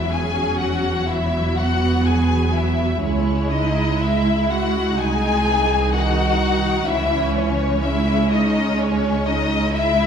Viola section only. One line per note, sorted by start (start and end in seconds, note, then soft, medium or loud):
0.00 2.97 F#3 soft
0.00 0.11 B3 soft
0.11 1.09 C#4 soft
1.09 3.01 B3 soft
3.02 4.96 G#3 medium
3.02 4.94 E4 medium
4.97 5.45 G#3 medium
4.97 5.93 D#4 medium
5.46 5.94 E3 medium
5.94 6.41 D#3 soft
5.94 6.87 D#4 soft
6.42 6.88 D#3 medium
6.89 7.82 E3 medium
6.89 7.83 C#4 medium
7.84 9.73 G#3 medium
7.84 9.70 C#4 medium
9.74 10.07 G#3 medium
9.74 10.07 E4 medium